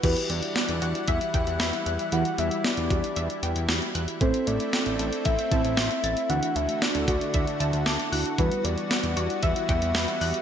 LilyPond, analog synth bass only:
\new Staff \with { instrumentName = "Analog synth bass" } { \clef bass \time 4/4 \key e \minor \tempo 4 = 115 e,16 r16 e,16 r8 e,16 e,16 r16 e,16 r16 e,16 e,16 e,16 r16 e,16 r16 | e,16 r16 e,16 r8 e,16 e,16 r16 e,16 r16 e,16 e,16 e,16 r16 e,16 r16 | a,,16 r16 a,,16 r8 a,,16 a,,16 r16 a,,16 r16 a,,16 a,,16 a,,16 r16 a,,16 r16 | d,16 r16 d,16 r8 d,16 d,16 r16 d,16 r16 d,16 d,16 d,16 r16 d,16 r16 |
e,16 r16 e,16 r8 e,16 e,16 r16 e,16 r16 e,16 e,16 e,16 r16 e,16 r16 | }